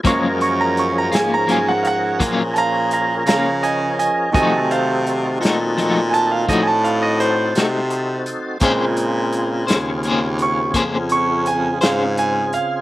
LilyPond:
<<
  \new Staff \with { instrumentName = "Grand piano" } { \time 12/8 \key bes \minor \tempo 4. = 56 des'''16 r16 des'''16 bes''16 des'''16 bes''16 aes''16 bes''16 aes''16 ges''16 <f'' ges''>8 r8 <f'' a'' bes''>8 <f'' bes''>8 <f'' bes''>8 <ees'' aes''>8 <ees'' aes''>8 | <ees'' aes''>8 <c'' f''>4 r4 <aes'' a''>16 f''16 ees''16 <aes'' a''>16 f''16 ees''16 c''2 | r2 r8 des'''8 r8 des'''8 aes''8 f''8 aes''8 f''8 | }
  \new Staff \with { instrumentName = "Grand piano" } { \clef bass \time 12/8 \key bes \minor <f aes bes>4. r1 r8 | <ees ges a>1. | <des aes c'>4. r1 r8 | }
  \new Staff \with { instrumentName = "Tonewheel organ" } { \time 12/8 \key bes \minor <f des' aes' bes'>1. | <c' ees' ges' a'>1. | <des c' f' aes'>1. | }
  \new Staff \with { instrumentName = "Clean electric guitar" } { \time 12/8 \key bes \minor <ges bes des' f'>8 r4 <bes des' f'>8 <ges bes des' f'>8 r8 <ges bes des' f'>8 r4 <bes des' f'>8 r4 | <f a ees' ges'>8 r4 <a ees' ges'>8 <f a ees' ges'>8 r8 <f a ees' ges'>8 r4 <a ees' ges'>8 r4 | <bes des' aes' c''>8 r4 <des' aes' c''>8 <bes des' aes' c''>8 r8 <bes des' aes' c''>8 r4 <des' aes' c''>8 r4 | }
  \new Staff \with { instrumentName = "Baritone saxophone" } { \clef bass \time 12/8 \key bes \minor ges,4. aes,4. bes,4. des4 r8 | c4. bes,4. a,4. c4 r8 | bes,4. ees,4. f,4. aes,4 r8 | }
  \new DrumStaff \with { instrumentName = "Drums" } \drummode { \time 12/8 <hh bd>8 hh8 hh8 <hh sn>8 hh8 hh8 <hh bd>8 hh8 hh8 <hh sn>8 hh8 hh8 | <hh bd>8 hh8 hh8 <hh sn>8 hh8 hh8 <hh bd>8 hh8 hh8 <hh sn>8 hh8 hh8 | <hh bd>8 hh8 hh8 <hh sn>8 hh8 hh8 <hh bd>8 hh8 hh8 <hh sn>8 hh8 hh8 | }
>>